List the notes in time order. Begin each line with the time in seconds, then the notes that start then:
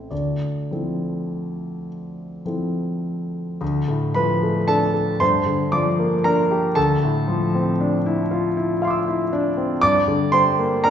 Already playing: A3 C4 E4 A4 E5
0.11 D2 D5
0.71 F3 C4 E4 A4
2.45 F3 C4 E4 A4
3.61 D2
3.88 A2
4.14 F3 B4 B5
4.43 A3
4.68 D4 A4 A5
4.94 A4
5.20 G2 C5 C6
5.46 D3
5.72 F3 D5 D6
5.99 A#3
6.24 D4 A#4 A#5
6.51 G4
6.75 D2 A4 A5
7.03 A2
7.28 F3
7.55 C4
7.81 D4
8.06 E4
8.31 F4
8.57 E4
8.82 F4 F5 C6
8.88 D6 E6
9.08 E4
9.33 D4
9.57 C4
9.81 G2 D5 D6
10.08 D3
10.32 G3 C5 C6
10.59 A#3
10.84 D4 A#4 A#5